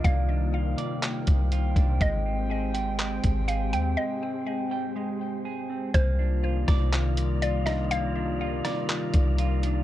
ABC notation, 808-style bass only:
X:1
M:4/4
L:1/8
Q:1/4=122
K:Cm
V:1 name="808-style bass" clef=bass
C,,3 z2 C,,2 C,, | A,,,4- A,,, A,,,2 E,, | z8 | C,,3 C,,4- C,,- |
C,,3 z2 C,,3 |]